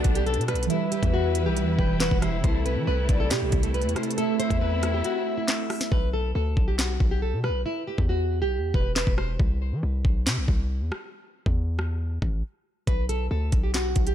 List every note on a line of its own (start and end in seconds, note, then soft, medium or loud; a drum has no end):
0.00 0.65 B2 medium
0.00 0.68 A3 medium
0.00 0.66 B3 medium
0.00 0.68 B3 medium
0.00 0.67 D4 medium
0.00 0.68 D4 medium
0.00 0.14 F#4 medium
0.00 0.68 A4 medium
0.04 0.39 B1 loud
0.04 kick medium
0.04 closed hi-hat medium
0.15 0.24 G4 medium
0.15 closed hi-hat medium
0.27 0.43 A4 medium
0.27 closed hi-hat soft
0.34 0.55 B2 loud
0.34 closed hi-hat medium
0.41 closed hi-hat medium
0.48 0.65 B4 medium
0.48 cross-stick loud
0.48 closed hi-hat medium
0.54 0.69 B1 loud
0.54 closed hi-hat medium
0.63 2.17 E3 medium
0.63 closed hi-hat medium
0.69 2.42 E3 medium
0.69 2.42 G3 medium
0.69 2.20 G3 medium
0.69 2.18 E4 medium
0.69 4.14 E4 medium
0.69 0.87 E4 medium
0.69 2.42 B4 medium
0.69 1.75 E5 loud
0.69 closed hi-hat medium
0.73 2.21 B4 medium
0.92 1.09 G4 medium
0.92 closed hi-hat medium
1.03 1.48 E2 loud
1.03 kick medium
1.03 closed hi-hat medium
1.14 1.44 F#4 medium
1.35 closed hi-hat medium
1.46 1.64 B1 loud
1.46 1.77 G4 medium
1.57 closed hi-hat medium
1.62 1.78 E2 loud
1.79 2.10 E1 loud
1.79 1.96 B4 medium
1.79 1.99 G5 medium
1.79 kick medium
2.00 2.17 B4 medium
2.00 2.21 F#5 medium
2.00 snare loud
2.00 clap loud
2.11 2.43 E1 loud
2.11 kick loud
2.21 2.43 E3 medium
2.21 2.44 E4 soft
2.21 2.44 G4 soft
2.21 2.45 B4 medium
2.21 2.39 C5 medium
2.21 2.43 E5 medium
2.21 cross-stick loud
2.21 closed hi-hat medium
2.41 2.78 C2 loud
2.41 3.91 C3 medium
2.41 4.16 C3 medium
2.41 4.16 G3 medium
2.41 5.88 A3 medium
2.41 3.93 C4 medium
2.41 2.61 C5 medium
2.41 kick loud
2.41 closed hi-hat medium
2.45 3.94 E4 medium
2.45 3.95 A4 medium
2.66 2.83 B4 medium
2.66 closed hi-hat medium
2.76 2.87 E3 loud
2.87 3.08 C2 loud
2.87 3.18 B4 medium
3.09 3.32 B1 loud
3.09 3.30 D5 loud
3.09 kick loud
3.09 closed hi-hat medium
3.20 3.28 A4 medium
3.30 3.43 C3 loud
3.30 3.61 G4 loud
3.30 snare loud
3.30 clap medium
3.30 closed hi-hat medium
3.42 3.52 B1 loud
3.52 3.87 C2 loud
3.52 kick medium
3.52 closed hi-hat medium
3.63 3.72 A4 medium
3.63 closed hi-hat medium
3.74 3.91 B4 medium
3.74 closed hi-hat soft
3.82 3.95 E2 loud
3.82 closed hi-hat medium
3.89 closed hi-hat medium
3.94 4.17 C3 medium
3.94 4.18 C4 soft
3.94 4.18 E4 soft
3.94 4.16 A4 medium
3.94 4.13 C5 medium
3.94 cross-stick loud
3.94 closed hi-hat medium
4.03 closed hi-hat medium
4.11 5.87 A3 medium
4.11 closed hi-hat medium
4.17 5.90 C4 medium
4.17 5.89 C4 medium
4.17 5.90 E4 medium
4.17 5.88 A4 medium
4.17 4.35 A4 medium
4.17 5.22 E5 loud
4.17 closed hi-hat medium
4.21 5.90 E5 medium
4.39 4.56 C5 loud
4.39 closed hi-hat medium
4.50 5.03 E2 loud
4.50 kick medium
4.50 closed hi-hat medium
4.61 4.92 B4 medium
4.83 cross-stick loud
4.83 closed hi-hat medium
4.94 5.02 G4 medium
5.04 5.35 F#4 medium
5.04 closed hi-hat medium
5.26 5.88 E5 medium
5.37 5.88 E4 medium
5.48 snare loud
5.48 clap loud
5.70 cross-stick loud
5.70 closed hi-hat soft
5.70 open hi-hat medium
5.81 snare medium
5.81 closed hi-hat medium
5.92 6.33 B1 loud
5.92 6.09 B4 medium
5.92 kick loud
6.13 6.30 A4 medium
6.35 6.56 D2 loud
6.35 6.66 A4 medium
6.57 6.99 B1 loud
6.57 kick medium
6.68 6.76 G4 medium
6.79 7.09 F#4 medium
6.79 snare loud
6.79 clap medium
7.00 7.35 B1 loud
7.00 kick medium
7.11 7.20 G4 medium
7.22 7.39 A4 medium
7.33 7.51 B2 loud
7.44 7.61 B4 medium
7.44 cross-stick medium
7.49 7.65 B1 loud
7.66 7.83 E4 medium
7.87 8.04 G4 medium
7.98 8.43 E2 loud
7.98 kick medium
8.09 8.40 F#4 medium
8.42 8.60 B1 medium
8.42 8.72 G4 medium
8.58 8.73 E2 loud
8.74 9.06 E1 loud
8.74 8.91 B4 medium
8.74 kick medium
8.96 9.13 B4 medium
8.96 snare loud
8.96 clap loud
9.07 9.38 E1 loud
9.07 kick medium
9.18 9.35 C5 medium
9.18 cross-stick loud
9.40 9.74 C2 loud
9.40 kick loud
9.72 9.82 E3 loud
9.83 10.04 C2 loud
10.05 10.28 B1 loud
10.05 kick medium
10.27 10.39 C3 loud
10.27 snare loud
10.27 clap medium
10.37 10.48 B1 loud
10.48 10.82 C2 loud
10.48 kick medium
10.81 10.91 E2 loud
10.92 cross-stick loud
11.46 12.19 E2 loud
11.46 kick medium
11.79 cross-stick loud
12.22 12.43 A1 loud
12.22 kick medium
12.87 13.29 B1 loud
12.87 13.04 B4 medium
12.87 kick loud
12.87 closed hi-hat medium
13.09 13.26 A4 medium
13.09 closed hi-hat medium
13.31 13.52 D2 loud
13.31 13.61 A4 medium
13.52 13.94 B1 loud
13.52 kick medium
13.52 closed hi-hat medium
13.63 13.72 G4 medium
13.74 14.05 F#4 medium
13.74 snare loud
13.74 clap medium
13.74 closed hi-hat medium
13.96 14.15 B1 loud
13.96 kick medium
13.96 closed hi-hat medium
14.07 14.15 G4 medium
14.07 closed hi-hat medium